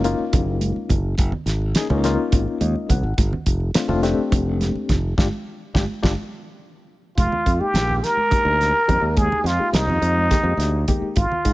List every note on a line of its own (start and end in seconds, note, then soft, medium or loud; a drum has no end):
0.00 0.16 F#1 medium
0.04 0.98 A#3 medium
0.04 0.98 C#4 medium
0.04 0.99 D#4 medium
0.04 0.99 F4 medium
0.04 closed hi-hat medium
0.19 muted fingered electric bass stroke soft
0.19 low conga soft
0.33 0.72 F#1 medium
0.33 kick medium
0.33 closed hi-hat medium
0.33 low conga medium
0.61 closed hi-hat medium
0.61 high conga medium
0.76 muted fingered electric bass stroke soft
0.76 low conga soft
0.89 1.16 F#1 medium
0.89 kick medium
0.89 closed hi-hat medium
0.89 low conga medium
1.18 1.32 F#1 medium
1.18 kick medium
1.18 closed hi-hat medium
1.18 high conga medium
1.32 low conga medium
1.46 1.72 G#1 medium
1.46 snare soft
1.46 closed hi-hat medium
1.46 low conga soft
1.62 low conga soft
1.75 1.88 A#3 medium
1.75 1.88 C#4 medium
1.75 1.88 D#4 medium
1.75 1.88 G#4 loud
1.75 snare loud
1.75 closed hi-hat medium
1.90 2.16 C#2 medium
1.90 2.02 A#3 medium
1.90 2.02 C#4 medium
1.90 2.02 D#4 medium
1.90 2.02 F4 medium
1.90 high conga medium
1.90 low conga medium
2.04 2.98 A#3 medium
2.04 2.98 C#4 medium
2.04 2.98 D#4 medium
2.04 2.98 F4 loud
2.04 snare soft
2.04 closed hi-hat medium
2.19 low conga soft
2.32 2.45 G#1 medium
2.32 kick medium
2.32 closed hi-hat medium
2.32 low conga medium
2.48 low conga soft
2.61 2.74 D#2 medium
2.61 2.88 D#5 medium
2.61 closed hi-hat medium
2.61 high conga medium
2.75 low conga soft
2.89 3.02 C2 medium
2.89 3.17 F#5 medium
2.89 kick medium
2.89 closed hi-hat medium
2.89 low conga medium
3.03 3.16 G#1 medium
3.18 3.31 G1 medium
3.18 kick loud
3.18 closed hi-hat medium
3.18 high conga medium
3.33 low conga medium
3.46 3.72 F1 medium
3.46 kick medium
3.46 closed hi-hat medium
3.46 low conga soft
3.60 low conga soft
3.74 3.87 A3 medium
3.74 3.87 C4 medium
3.74 3.87 D4 medium
3.74 3.87 F4 medium
3.74 snare loud
3.74 closed hi-hat medium
3.88 4.15 F1 medium
3.88 4.01 A3 medium
3.88 4.01 C4 medium
3.88 4.01 D4 medium
3.88 4.01 F4 medium
3.88 high conga medium
3.88 low conga medium
4.03 4.97 A3 medium
4.03 4.97 C4 medium
4.03 4.97 D4 medium
4.03 4.97 G4 loud
4.03 snare soft
4.03 closed hi-hat medium
4.18 muted fingered electric bass stroke soft
4.18 low conga soft
4.32 4.71 F1 medium
4.32 kick loud
4.32 closed hi-hat medium
4.32 low conga medium
4.46 low conga soft
4.61 snare soft
4.61 closed hi-hat soft
4.61 high conga medium
4.75 muted fingered electric bass stroke soft
4.75 low conga soft
4.89 5.15 F1 medium
4.89 kick medium
4.89 snare soft
4.89 closed hi-hat medium
4.89 low conga medium
5.18 5.28 G1 medium
5.18 5.27 D4 loud
5.18 5.27 F4 medium
5.18 5.27 G4 medium
5.18 kick medium
5.18 snare medium
5.18 high conga medium
5.74 5.85 G1 medium
5.74 5.84 D4 medium
5.74 5.84 F4 medium
5.74 5.84 G4 medium
5.74 kick medium
5.74 snare medium
5.74 high conga medium
6.03 6.14 G1 medium
6.03 6.12 D4 loud
6.03 6.12 F4 medium
6.03 6.12 G4 medium
6.03 kick medium
6.03 snare medium
6.03 high conga medium
7.17 7.30 F1 medium
7.17 7.62 F4 medium
7.17 kick medium
7.17 closed hi-hat medium
7.17 high conga medium
7.17 low conga soft
7.32 muted fingered electric bass stroke soft
7.32 low conga medium
7.46 7.59 F2 medium
7.46 kick medium
7.46 closed hi-hat medium
7.46 low conga soft
7.60 8.19 G#3 medium
7.60 8.19 A#3 soft
7.60 8.19 D#4 soft
7.60 8.05 G4 medium
7.60 8.19 G4 medium
7.60 muted fingered electric bass stroke soft
7.60 low conga soft
7.74 8.00 A#1 medium
7.74 snare medium
7.74 closed hi-hat medium
7.74 low conga soft
7.89 low conga medium
8.04 9.19 A#4 medium
8.04 snare soft
8.04 closed hi-hat medium
8.04 low conga soft
8.17 high conga medium
8.31 8.79 G#3 medium
8.31 8.79 A#3 medium
8.31 8.79 D#4 medium
8.31 8.79 G4 medium
8.31 kick medium
8.31 closed hi-hat medium
8.31 low conga medium
8.45 8.71 D2 medium
8.61 snare soft
8.61 closed hi-hat soft
8.88 9.01 F2 medium
8.88 9.47 G#3 medium
8.88 9.47 A#3 medium
8.88 9.47 D#4 medium
8.88 9.47 G4 medium
8.88 kick medium
8.88 closed hi-hat soft
8.88 low conga medium
9.01 9.28 D#2 medium
9.17 9.48 G#4 medium
9.17 kick medium
9.17 closed hi-hat medium
9.17 high conga medium
9.17 low conga soft
9.32 low conga medium
9.44 9.58 F2 medium
9.44 9.76 F4 medium
9.44 snare soft
9.44 closed hi-hat medium
9.44 low conga soft
9.59 10.18 G#3 medium
9.59 10.18 A#3 medium
9.59 10.18 D#4 medium
9.59 10.18 G4 medium
9.59 muted fingered electric bass stroke soft
9.59 low conga soft
9.73 9.86 C2 medium
9.73 10.88 D#4 medium
9.73 snare loud
9.73 closed hi-hat medium
9.87 10.00 F2 medium
9.87 low conga medium
10.02 10.28 F2 medium
10.02 closed hi-hat medium
10.18 high conga medium
10.31 10.78 G#3 medium
10.31 10.78 A#3 medium
10.31 10.78 D#4 medium
10.31 10.78 G4 medium
10.31 kick medium
10.31 snare soft
10.31 closed hi-hat medium
10.31 low conga medium
10.43 10.57 F2 medium
10.57 10.84 D2 medium
10.57 snare soft
10.57 closed hi-hat medium
10.88 11.16 G#3 medium
10.88 11.17 A#3 medium
10.88 11.17 D#4 medium
10.88 11.17 G4 medium
10.88 kick medium
10.88 closed hi-hat medium
10.88 low conga medium
11.02 muted fingered electric bass stroke soft
11.16 11.29 G#1 medium
11.16 11.53 F4 medium
11.16 kick medium
11.16 closed hi-hat medium
11.16 high conga medium
11.16 low conga soft
11.32 low conga medium
11.45 11.53 G#2 medium
11.45 kick medium
11.45 closed hi-hat medium